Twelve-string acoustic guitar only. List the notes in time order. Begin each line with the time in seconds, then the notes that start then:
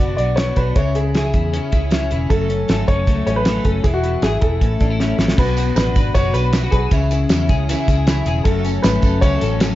0.00 F#3 B3 D4 F#4
0.18 B3 D4 F#4
0.38 B2 F#3 B3 D4 F#4
0.57 B3 D4 F#4
0.75 C#3 E3 C#4 E4 G#4
0.95 C#4 E4 G#4
1.14 C#3 E3 C#4 E4 G#4
1.33 C#4 E4 G#4
1.54 E3 C#4 E4 G#4
1.73 C#4 E4 G#4
1.90 C#3 E3 C#4 E4 G#4
2.11 C#4 E4 G#4
2.30 F#2 C#3 F#3 A3 C#4 A4
2.49 F#3 A3 C#4 A4
2.68 F#2 C#3 F#3 A3 C#4 A4
2.87 F#3 A3 C#4 A4
3.07 F#3 A3 C#4 A4
3.27 F#3 A3 C#4 A4
3.46 F#2 C#3 F#3 A3 C#4 A4
3.65 F#3 A3 C#4 A4
3.84 E3 B3 E4 G#4
4.03 B3 E4 G#4
4.22 E3 B3 E4 G#4
4.42 B3 E4 G#4
4.61 A3 C#4 E4 A4
4.80 A3 C#4 E4 A4
5.00 A2 E3 A3 C#4 E4 A4
5.19 A3 C#4 E4 A4
5.38 B2 F#3 D4 F#4 B4
5.57 D4 F#4 B4
5.76 F#3 D4 F#4 B4
5.96 D4 F#4 B4
6.16 B2 F#3 D4 F#4 B4
6.34 D4 F#4 B4
6.53 F#3 D4 F#4 B4
6.72 D4 F#4 B4
6.91 C#3 E3 C#4 E4 G#4
7.11 C#4 E4 G#4
7.30 E3 C#4 E4 G#4
7.49 C#4 E4 G#4
7.69 C#3 E3 C#4 E4 G#4
7.89 C#4 E4 G#4
8.07 E3 C#4 E4 G#4
8.27 C#4 E4 G#4
8.46 F#2 C#3 F#3 A3 C#4 A4
8.65 F#3 A3 C#4 A4
8.84 F#3 A3 C#4 A4
9.03 F#3 A3 C#4 A4
9.22 F#2 C#3 F#3 A3 C#4 A4
9.41 F#3 A3 C#4 A4
9.61 F#3 A3 C#4 A4